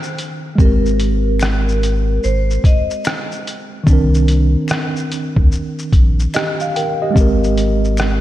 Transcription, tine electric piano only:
0.00 0.52 D#3 medium
0.00 0.54 C4 medium
0.00 0.56 D4 medium
0.00 0.57 A#4 medium
0.55 3.82 G#3 medium
0.55 3.83 C4 medium
0.62 3.85 G4 medium
0.62 3.87 A#4 medium
3.84 7.10 D#3 medium
3.84 7.12 C4 medium
3.90 7.13 D4 medium
3.90 6.33 A#4 medium
6.34 6.60 G4 medium
6.34 6.59 D#5 medium
6.61 6.75 F5 medium
6.76 7.01 A#4 medium
6.76 7.01 G5 medium
7.02 7.16 G4 medium
7.02 7.41 D#5 medium
7.11 8.21 G#3 medium
7.11 8.21 C4 medium
7.17 7.57 G4 medium
7.17 7.59 A#4 medium

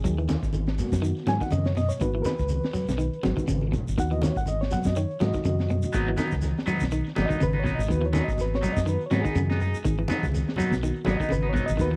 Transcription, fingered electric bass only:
0.06 0.35 D#2 loud
0.43 0.81 G#1 medium
0.93 1.12 F#2 medium
1.27 1.38 G#2 medium
1.53 1.90 F#2 medium
2.01 2.20 G#1 loud
2.40 2.59 C#2 medium
2.89 3.08 B1 loud
3.26 3.36 G#1 medium
3.50 3.79 G#1 medium
3.89 3.97 G#1 medium
3.99 4.28 D#2 loud
4.37 4.74 G#1 medium
4.85 5.04 F#2 medium
5.21 5.31 G#2 medium
5.45 5.83 F#2 medium
5.95 6.13 G#1 loud
6.33 6.51 C#2 medium
6.82 7.01 B1 medium
7.18 7.28 G#1 medium
7.42 7.71 G#1 medium
7.79 7.87 G#1 medium
7.90 8.20 D#2 loud
8.29 8.66 G#1 medium
8.77 8.96 F#2 medium
9.12 9.22 G#2 medium
9.35 9.73 F#2 medium
9.86 10.04 G#1 loud
10.23 10.42 C#2 medium
10.72 10.90 B1 loud
11.07 11.17 G#1 medium
11.31 11.60 G#1 medium
11.70 11.78 G#1 loud
11.80 11.96 D#2 loud

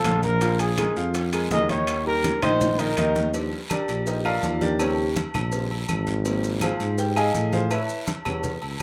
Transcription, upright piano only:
0.05 0.35 F3 medium
0.05 0.35 F4 medium
0.05 0.35 F5 medium
0.42 0.72 F3 medium
0.42 0.72 F4 medium
0.42 0.72 F5 medium
0.78 0.93 G#3 medium
0.78 0.94 G#4 medium
0.78 0.94 A#4 medium
0.97 1.26 F3 medium
0.97 1.27 F4 medium
0.97 1.27 F5 medium
1.33 1.48 G#3 medium
1.33 1.48 G#4 medium
1.33 1.48 A#4 medium
1.52 1.67 G#3 medium
1.52 1.67 G#4 medium
1.52 1.67 A#4 medium
1.70 2.00 D#3 medium
1.70 2.00 D#4 medium
1.70 2.00 D#5 medium
2.06 2.36 G3 medium
2.06 2.36 G4 medium
2.06 2.37 A#4 medium
2.42 2.72 D#3 medium
2.42 2.73 D#4 medium
2.42 2.73 D#5 loud
2.79 2.94 D#3 medium
2.79 2.94 D#4 medium
2.79 2.94 D#5 medium
2.98 3.27 D#3 medium
2.98 3.28 D#4 medium
2.98 3.28 D#5 medium
3.34 3.58 F3 medium
3.34 3.58 G3 medium
3.34 3.58 D4 medium
3.71 4.05 D4 medium
3.71 4.05 G4 medium
3.71 4.04 A#4 medium
3.71 4.04 D5 medium
4.07 4.25 D#4 medium
4.07 4.25 G4 medium
4.07 4.24 A#4 medium
4.07 4.25 D#5 medium
4.25 4.59 F4 medium
4.25 4.59 A#4 medium
4.25 4.59 D5 medium
4.25 4.59 F5 loud
4.61 4.79 D4 medium
4.61 4.79 G4 medium
4.61 4.79 A#4 medium
4.61 4.79 D5 loud
4.79 5.03 C#3 soft
4.79 5.04 F3 medium
4.79 5.04 G3 medium
4.79 5.04 C4 medium
4.79 5.14 C#4 medium
4.79 5.14 G4 medium
4.79 5.14 A#4 medium
4.79 5.14 C#5 medium
5.52 5.68 C#3 soft
5.52 5.68 F3 soft
5.52 5.69 G3 soft
5.52 5.69 C4 soft
6.25 6.77 F3 medium
6.25 6.77 A#3 medium
6.25 6.77 C4 medium
6.63 6.96 F4 medium
6.63 6.96 G#4 medium
6.63 6.96 C5 medium
6.63 6.96 F5 medium
6.99 7.16 G4 medium
6.99 7.16 G5 medium
7.17 7.50 G#4 medium
7.17 7.50 D#5 medium
7.17 7.50 F5 medium
7.17 7.50 G#5 loud
7.53 7.70 F4 medium
7.53 7.71 G#4 medium
7.53 7.71 C5 medium
7.53 7.70 F5 medium
7.72 8.05 E4 medium
7.72 8.05 B4 medium
7.72 8.05 C#5 medium
7.72 8.05 E5 medium
8.25 8.49 G3 medium
8.25 8.50 B3 soft
8.25 8.50 C#4 medium

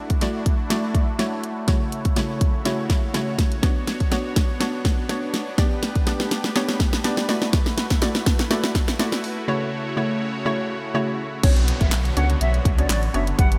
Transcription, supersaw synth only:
0.00 3.59 A3 medium
0.00 1.66 D4 medium
0.00 1.66 E4 medium
0.00 1.66 F#4 medium
1.68 3.61 C#3 medium
1.68 3.61 E4 medium
1.68 5.54 F#4 medium
1.68 5.54 C#5 medium
3.63 7.25 B3 medium
3.63 7.25 D4 medium
5.58 7.27 G4 medium
5.58 9.45 B4 medium
7.29 11.39 A3 medium
7.29 11.39 E4 medium
7.29 11.39 F#4 medium
9.48 11.42 C#3 medium
9.48 11.42 C#5 medium
11.44 13.59 D3 medium
11.44 13.59 B3 medium
11.44 13.37 F#4 loud
11.44 13.37 C#5 medium
13.39 13.59 G3 medium
13.39 13.59 G4 medium

